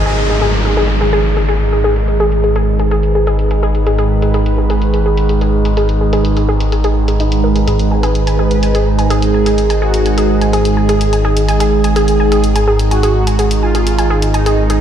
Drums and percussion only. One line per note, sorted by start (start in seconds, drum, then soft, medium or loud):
1.01 closed hi-hat medium
1.48 closed hi-hat medium
1.60 closed hi-hat medium
1.84 closed hi-hat medium
1.96 closed hi-hat medium
2.08 closed hi-hat soft
2.32 closed hi-hat medium
2.44 closed hi-hat medium
2.56 closed hi-hat medium
2.79 closed hi-hat soft
2.91 closed hi-hat medium
3.03 closed hi-hat medium
3.27 closed hi-hat medium
3.39 closed hi-hat soft
3.51 closed hi-hat medium
3.75 closed hi-hat medium
3.87 closed hi-hat soft
3.98 closed hi-hat soft
4.22 closed hi-hat soft
4.34 closed hi-hat medium
4.46 closed hi-hat soft
4.70 closed hi-hat soft
4.82 closed hi-hat soft
4.94 closed hi-hat soft
5.17 closed hi-hat medium
5.29 closed hi-hat soft
5.41 closed hi-hat soft
5.65 closed hi-hat soft
5.77 closed hi-hat medium
5.89 closed hi-hat soft
6.13 closed hi-hat soft
6.25 closed hi-hat soft
6.37 closed hi-hat soft
6.60 closed hi-hat soft
6.72 closed hi-hat soft
6.84 closed hi-hat soft
7.08 closed hi-hat soft
7.20 closed hi-hat soft
7.32 closed hi-hat soft
7.56 closed hi-hat soft
7.68 closed hi-hat medium
7.79 closed hi-hat soft
8.03 closed hi-hat soft
8.15 closed hi-hat soft
8.27 closed hi-hat soft
8.51 closed hi-hat soft
8.63 closed hi-hat soft
8.75 closed hi-hat soft
8.99 closed hi-hat soft
9.10 closed hi-hat soft
9.22 closed hi-hat soft
9.46 closed hi-hat medium
9.58 closed hi-hat medium
9.70 closed hi-hat medium
9.94 closed hi-hat medium
10.06 closed hi-hat soft
10.18 closed hi-hat soft
10.41 closed hi-hat soft
10.53 closed hi-hat medium
10.65 closed hi-hat medium
10.89 closed hi-hat medium
11.01 closed hi-hat soft
11.13 closed hi-hat medium
11.37 closed hi-hat medium
11.49 closed hi-hat medium
11.60 closed hi-hat medium
11.84 closed hi-hat medium
11.96 closed hi-hat medium
12.08 closed hi-hat medium
12.32 closed hi-hat medium
12.44 closed hi-hat medium
12.56 closed hi-hat medium
12.79 closed hi-hat medium
12.91 closed hi-hat medium
13.03 closed hi-hat medium
13.27 closed hi-hat medium
13.39 closed hi-hat medium
13.51 closed hi-hat medium
13.75 closed hi-hat medium
13.87 closed hi-hat medium
13.99 closed hi-hat medium
14.22 closed hi-hat medium
14.34 closed hi-hat medium
14.46 closed hi-hat medium
14.70 closed hi-hat medium